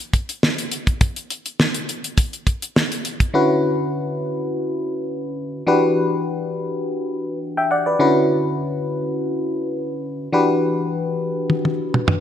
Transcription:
0.00 closed hi-hat soft
0.13 kick medium
0.13 closed hi-hat medium
0.29 closed hi-hat medium
0.43 snare loud
0.58 closed hi-hat medium
0.72 closed hi-hat medium
0.87 kick medium
0.87 closed hi-hat soft
1.01 kick loud
1.01 closed hi-hat medium
1.16 closed hi-hat soft
1.30 closed hi-hat medium
1.46 closed hi-hat medium
1.60 snare loud
1.74 closed hi-hat medium
1.89 closed hi-hat medium
2.04 closed hi-hat medium
2.18 kick loud
2.18 closed hi-hat medium
2.33 closed hi-hat soft
2.47 kick medium
2.47 closed hi-hat medium
2.62 closed hi-hat medium
2.76 snare loud
2.92 closed hi-hat medium
3.05 closed hi-hat medium
3.20 kick medium
3.20 closed hi-hat soft
3.34 5.63 D3 medium
3.34 5.63 C#4 medium
3.34 5.63 E4 medium
3.34 5.63 F#4 medium
3.34 5.64 B4 medium
5.67 7.96 E3 medium
5.67 7.96 D4 medium
5.67 7.96 F#4 medium
5.67 7.96 G4 medium
5.67 7.39 B4 medium
7.57 7.71 E5 medium
7.57 7.70 G5 medium
7.71 7.85 D5 medium
7.71 7.86 F#5 medium
7.86 8.00 B4 medium
7.86 8.14 D5 medium
7.99 10.29 D3 medium
7.99 10.29 C#4 medium
7.99 10.29 E4 medium
7.99 10.29 F#4 medium
7.99 10.29 B4 medium
10.33 12.20 E3 medium
10.33 12.20 D4 medium
10.33 12.20 F#4 medium
10.33 12.20 G4 medium
10.33 12.20 B4 medium
11.50 high tom medium
11.65 high tom medium
11.94 mid tom medium
12.08 mid tom medium

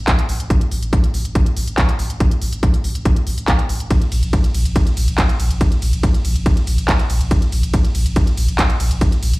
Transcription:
0.08 kick loud
0.08 clap loud
0.08 closed hi-hat loud
0.19 closed hi-hat medium
0.29 0.39 A1 loud
0.29 open hi-hat loud
0.40 0.50 A1 medium
0.40 closed hi-hat medium
0.50 kick loud
0.50 closed hi-hat medium
0.61 closed hi-hat medium
0.71 0.82 A1 loud
0.71 open hi-hat loud
0.82 0.92 A1 medium
0.82 closed hi-hat medium
0.93 kick loud
0.93 closed hi-hat loud
1.04 closed hi-hat medium
1.14 1.24 A1 loud
1.14 open hi-hat medium
1.25 1.35 A1 medium
1.25 closed hi-hat medium
1.35 kick loud
1.35 closed hi-hat loud
1.46 closed hi-hat medium
1.57 1.67 A1 loud
1.57 open hi-hat loud
1.68 1.78 A1 medium
1.68 closed hi-hat medium
1.78 kick loud
1.78 clap loud
1.78 closed hi-hat medium
1.89 closed hi-hat medium
1.99 2.10 A1 loud
1.99 open hi-hat medium
2.10 2.20 A1 medium
2.10 closed hi-hat medium
2.20 kick loud
2.20 closed hi-hat medium
2.31 closed hi-hat medium
2.42 2.52 A1 loud
2.42 open hi-hat loud
2.53 2.63 A1 medium
2.53 closed hi-hat medium
2.63 kick loud
2.63 closed hi-hat medium
2.74 closed hi-hat medium
2.84 2.95 A1 loud
2.84 open hi-hat loud
2.95 3.05 A1 medium
2.95 closed hi-hat medium
3.05 kick loud
3.05 closed hi-hat loud
3.16 closed hi-hat medium
3.27 3.37 A1 loud
3.27 open hi-hat loud
3.38 3.48 A1 medium
3.38 closed hi-hat medium
3.48 kick loud
3.48 clap loud
3.48 closed hi-hat loud
3.59 closed hi-hat medium
3.69 3.80 A1 loud
3.69 open hi-hat loud
3.80 3.90 A1 medium
3.80 closed hi-hat medium
3.90 kick loud
3.90 closed hi-hat medium
3.90 ride medium
4.01 closed hi-hat medium
4.12 4.22 A#1 loud
4.12 open hi-hat loud
4.12 ride medium
4.23 4.33 A#1 medium
4.23 closed hi-hat medium
4.33 kick loud
4.33 closed hi-hat medium
4.33 ride medium
4.44 closed hi-hat medium
4.54 4.65 A#1 loud
4.54 open hi-hat loud
4.54 ride medium
4.65 4.76 A#1 medium
4.65 closed hi-hat medium
4.76 kick loud
4.76 closed hi-hat medium
4.76 ride medium
4.87 closed hi-hat medium
4.97 5.07 A#1 loud
4.97 open hi-hat loud
4.97 ride medium
5.08 5.18 A#1 medium
5.08 closed hi-hat medium
5.18 kick loud
5.18 clap loud
5.18 closed hi-hat medium
5.18 ride medium
5.29 closed hi-hat soft
5.40 5.50 A#1 loud
5.40 open hi-hat medium
5.40 ride medium
5.51 5.61 A#1 medium
5.51 closed hi-hat medium
5.61 kick loud
5.61 closed hi-hat medium
5.61 ride medium
5.72 closed hi-hat medium
5.82 5.93 A#1 medium
5.82 open hi-hat loud
5.82 ride medium
5.93 6.03 A#1 medium
5.93 closed hi-hat medium
6.03 kick loud
6.03 closed hi-hat medium
6.03 ride medium
6.14 closed hi-hat medium
6.25 6.35 A#1 loud
6.25 open hi-hat medium
6.25 ride medium
6.36 6.46 A#1 medium
6.36 closed hi-hat medium
6.46 kick loud
6.46 closed hi-hat medium
6.46 ride medium
6.57 closed hi-hat medium
6.67 6.78 A#1 loud
6.67 open hi-hat loud
6.67 ride medium
6.78 6.88 A#1 medium
6.78 closed hi-hat medium
6.88 kick loud
6.88 clap loud
6.88 closed hi-hat medium
6.88 ride medium
6.99 closed hi-hat medium
7.10 7.20 A#1 medium
7.10 open hi-hat medium
7.10 ride medium
7.21 7.31 A#1 medium
7.21 closed hi-hat soft
7.31 kick loud
7.31 closed hi-hat loud
7.31 ride medium
7.42 closed hi-hat medium
7.52 7.63 A#1 loud
7.52 open hi-hat loud
7.52 ride medium
7.63 7.73 A#1 medium
7.63 closed hi-hat medium
7.74 kick loud
7.74 closed hi-hat loud
7.74 ride medium
7.84 closed hi-hat medium
7.95 8.05 A#1 loud
7.95 open hi-hat medium
7.95 ride medium
8.06 8.16 A#1 medium
8.06 closed hi-hat medium
8.16 kick loud
8.16 closed hi-hat loud
8.16 ride medium
8.27 closed hi-hat medium
8.37 8.48 A#1 loud
8.37 open hi-hat loud
8.37 ride medium
8.48 8.59 A#1 medium
8.48 closed hi-hat medium
8.59 kick loud
8.59 clap loud
8.59 closed hi-hat medium
8.59 ride medium
8.70 closed hi-hat medium
8.80 8.90 A#1 loud
8.80 open hi-hat medium
8.80 ride medium
8.91 9.01 A#1 medium
8.91 closed hi-hat medium
9.01 kick loud
9.01 closed hi-hat loud
9.01 ride medium
9.12 closed hi-hat medium
9.23 9.33 A#1 medium
9.23 open hi-hat loud
9.23 ride medium
9.33 9.39 A#1 medium
9.33 closed hi-hat medium

